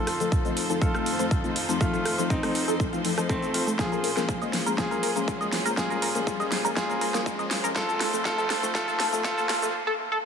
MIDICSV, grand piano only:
0, 0, Header, 1, 2, 480
1, 0, Start_track
1, 0, Key_signature, -5, "minor"
1, 0, Tempo, 495868
1, 1749, Time_signature, 4, 2, 24, 8
1, 9923, End_track
2, 0, Start_track
2, 0, Title_t, "Grand piano"
2, 0, Program_c, 0, 0
2, 0, Note_on_c, 0, 65, 74
2, 0, Note_on_c, 0, 69, 97
2, 698, Note_off_c, 0, 65, 0
2, 698, Note_off_c, 0, 69, 0
2, 788, Note_on_c, 0, 69, 93
2, 789, Note_on_c, 0, 65, 77
2, 1657, Note_off_c, 0, 69, 0
2, 1658, Note_off_c, 0, 65, 0
2, 1749, Note_on_c, 0, 57, 74
2, 1749, Note_on_c, 0, 65, 88
2, 2183, Note_off_c, 0, 57, 0
2, 2183, Note_off_c, 0, 65, 0
2, 2228, Note_on_c, 0, 60, 77
2, 2228, Note_on_c, 0, 63, 86
2, 2663, Note_off_c, 0, 60, 0
2, 2663, Note_off_c, 0, 63, 0
2, 3189, Note_on_c, 0, 57, 77
2, 3189, Note_on_c, 0, 60, 82
2, 3624, Note_off_c, 0, 57, 0
2, 3624, Note_off_c, 0, 60, 0
2, 3668, Note_on_c, 0, 68, 84
2, 3669, Note_on_c, 0, 65, 68
2, 4537, Note_off_c, 0, 65, 0
2, 4537, Note_off_c, 0, 68, 0
2, 4628, Note_on_c, 0, 65, 68
2, 4629, Note_on_c, 0, 68, 89
2, 5497, Note_off_c, 0, 65, 0
2, 5498, Note_off_c, 0, 68, 0
2, 5588, Note_on_c, 0, 68, 91
2, 5589, Note_on_c, 0, 65, 73
2, 6457, Note_off_c, 0, 68, 0
2, 6458, Note_off_c, 0, 65, 0
2, 6549, Note_on_c, 0, 65, 72
2, 6549, Note_on_c, 0, 68, 98
2, 7418, Note_off_c, 0, 65, 0
2, 7418, Note_off_c, 0, 68, 0
2, 7509, Note_on_c, 0, 65, 75
2, 7509, Note_on_c, 0, 69, 99
2, 7971, Note_off_c, 0, 65, 0
2, 7971, Note_off_c, 0, 69, 0
2, 7989, Note_on_c, 0, 65, 80
2, 7989, Note_on_c, 0, 69, 104
2, 8451, Note_off_c, 0, 65, 0
2, 8451, Note_off_c, 0, 69, 0
2, 8469, Note_on_c, 0, 65, 75
2, 8469, Note_on_c, 0, 69, 101
2, 8931, Note_off_c, 0, 65, 0
2, 8931, Note_off_c, 0, 69, 0
2, 8950, Note_on_c, 0, 65, 80
2, 8950, Note_on_c, 0, 69, 98
2, 9411, Note_off_c, 0, 65, 0
2, 9411, Note_off_c, 0, 69, 0
2, 9923, End_track
0, 0, End_of_file